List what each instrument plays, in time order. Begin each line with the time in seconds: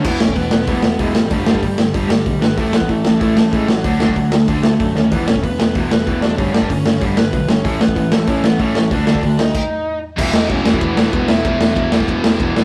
0.04 picked electric bass E1, overdriven electric guitar E2 B2 E3, lead electric guitar B3 B4, kick, crash
0.20 picked electric bass E1, overdriven electric guitar E2 B2, lead electric guitar C#4 C#5, snare
0.28 kick
0.35 picked electric bass E1, overdriven electric guitar E2 B2, lead electric guitar B3 B4, kick, open hi-hat
0.51 picked electric bass E1, overdriven electric guitar E2 B2, snare
0.67 picked electric bass E1, overdriven electric guitar E2 B2 E3, lead electric guitar B3 B4, kick, open hi-hat
0.82 picked electric bass E1, overdriven electric guitar E2 B2, snare
0.99 picked electric bass E1, overdriven electric guitar E2 B2 E3, lead electric guitar G#3 G#4, kick, open hi-hat
1.14 picked electric bass G#1, overdriven electric guitar E2 B2, lead electric guitar G3 G4, snare
1.31 picked electric bass G1, overdriven electric guitar G2 D3 G3, kick, open hi-hat
1.47 picked electric bass G1, overdriven electric guitar G2 D3 G3, snare
1.55 kick
1.63 picked electric bass G1, overdriven electric guitar G2 D3, kick, open hi-hat
1.78 overdriven electric guitar G2 D3, snare
1.94 picked electric bass G1, overdriven electric guitar G2 D3 G3, kick, open hi-hat
2.09 picked electric bass G1, overdriven electric guitar G2 D3, lead electric guitar G3 G4, snare
2.25 picked electric bass B1, overdriven electric guitar G2 D3, kick, open hi-hat
2.40 picked electric bass G1, overdriven electric guitar G2 D3, lead electric guitar B3 B4, snare
2.57 picked electric bass A1, overdriven electric guitar A2 E3 A3, lead electric guitar A3 A4, kick, open hi-hat
2.73 picked electric bass A1, overdriven electric guitar A2 E3, lead electric guitar B3 B4, snare
2.81 kick
2.89 picked electric bass A1, overdriven electric guitar A2 E3, lead electric guitar A3 A4, kick, open hi-hat
3.05 picked electric bass A1, overdriven electric guitar A2 E3, snare
3.19 picked electric bass A1, overdriven electric guitar A2 E3 A3, lead electric guitar A3 A4, kick, open hi-hat
3.36 picked electric bass A1, overdriven electric guitar A2 E3, snare
3.51 picked electric bass A1, overdriven electric guitar A2 E3 A3, lead electric guitar G#3 G#4, kick, open hi-hat
3.68 picked electric bass A1, overdriven electric guitar A2 E3, lead electric guitar F#3 F#4, snare
3.84 picked electric bass D2, overdriven electric guitar D3 A3 D4, kick, open hi-hat
4.00 picked electric bass D2, overdriven electric guitar D3 A3 D4, snare
4.08 kick
4.16 picked electric bass D2, overdriven electric guitar D3 A3, kick, open hi-hat
4.32 overdriven electric guitar D3 A3, snare
4.48 picked electric bass D2, overdriven electric guitar D3 A3 D4, kick, open hi-hat
4.63 picked electric bass D2, overdriven electric guitar D3 A3, lead electric guitar A3 A4, snare
4.80 picked electric bass F#2, overdriven electric guitar D3 A3, kick, open hi-hat
4.95 picked electric bass D#2, overdriven electric guitar D3 A3, lead electric guitar C#4 C#5, snare
5.11 picked electric bass E1, overdriven electric guitar E2 B2 E3, lead electric guitar B3 B4, kick, open hi-hat
5.27 picked electric bass E1, overdriven electric guitar E2 B2, lead electric guitar C#4 C#5, snare
5.36 kick
5.43 picked electric bass E1, overdriven electric guitar E2 B2, lead electric guitar B3 B4, kick, open hi-hat
5.59 picked electric bass E1, overdriven electric guitar E2 B2, snare
5.74 picked electric bass E1, overdriven electric guitar E2 B2 E3, kick, open hi-hat
5.90 picked electric bass E1, overdriven electric guitar E2 B2, lead electric guitar B3 B4, snare
6.06 picked electric bass E1, overdriven electric guitar E2 B2 E3, kick, open hi-hat
6.22 picked electric bass E1, overdriven electric guitar E2 B2, lead electric guitar D4 D5, snare
6.37 picked electric bass G1, overdriven electric guitar G2 D3 G3, lead electric guitar C#4 C#5, kick, open hi-hat
6.53 picked electric bass G1, overdriven electric guitar G2 D3 G3, lead electric guitar D4 D5, snare
6.62 kick
6.69 picked electric bass G1, overdriven electric guitar G2 D3, lead electric guitar C#4 C#5, kick, open hi-hat
6.86 overdriven electric guitar G2 D3, snare
7.01 picked electric bass G1, overdriven electric guitar G2 D3 G3, kick, open hi-hat
7.17 picked electric bass G1, overdriven electric guitar G2 D3, lead electric guitar B3 B4, snare
7.33 picked electric bass B1, overdriven electric guitar G2 D3, kick, open hi-hat
7.48 picked electric bass G1, overdriven electric guitar G2 D3, lead electric guitar C#4 C#5, snare
7.64 picked electric bass A1, overdriven electric guitar A2 E3 A3, kick, open hi-hat
7.80 picked electric bass A1, overdriven electric guitar A2 E3, lead electric guitar B3 B4, snare
7.88 kick
7.96 picked electric bass A1, overdriven electric guitar A2 E3, kick, open hi-hat
8.11 picked electric bass A1, overdriven electric guitar A2 E3, lead electric guitar A3 A4, snare
8.27 picked electric bass A1, overdriven electric guitar A2 E3 A3, lead electric guitar C#4 C#5, kick, open hi-hat
8.43 picked electric bass A1, overdriven electric guitar A2 E3, lead electric guitar B3 B4, snare
8.59 picked electric bass A1, overdriven electric guitar A2 E3 A3, lead electric guitar C#4 C#5, kick, open hi-hat
8.75 picked electric bass A1, overdriven electric guitar A2 E3, snare
8.91 picked electric bass D2, overdriven electric guitar D3 A3 D4, lead electric guitar D4 D5, kick, open hi-hat
9.07 picked electric bass D2, overdriven electric guitar D3 A3 D4, snare
9.15 lead electric guitar D4 D5, kick
9.23 picked electric bass D2, overdriven electric guitar D3 A3, kick, open hi-hat
9.38 overdriven electric guitar D3 A3, lead electric guitar D#4 D#5, snare
9.55 kick, crash
10.17 picked electric bass E1, overdriven electric guitar E2 B2 E3, lead electric guitar E4 E5, kick, crash
10.33 picked electric bass E1, lead electric guitar D#4 D#5, snare
10.48 picked electric bass E1, lead electric guitar C#4 C#5, kick, ride
10.65 picked electric bass E1, overdriven electric guitar E2 B2 E3, snare
10.74 kick
10.80 picked electric bass E1, lead electric guitar B3 B4, kick, ride
10.97 picked electric bass E1, snare
11.12 picked electric bass E1, overdriven electric guitar E2 B2 E3, lead electric guitar B3 B4, kick, ride
11.28 picked electric bass E1, lead electric guitar E4 E5, snare
11.44 picked electric bass E1, overdriven electric guitar E2 B2 E3, kick, ride
11.60 picked electric bass E1, snare
11.76 picked electric bass E1, kick, ride
11.91 picked electric bass E1, overdriven electric guitar E2 B2 E3, snare
12.00 kick
12.08 picked electric bass E1, kick, ride
12.23 picked electric bass E1, snare
12.39 picked electric bass E1, overdriven electric guitar E2 B2 E3, kick, ride
12.55 picked electric bass E1, snare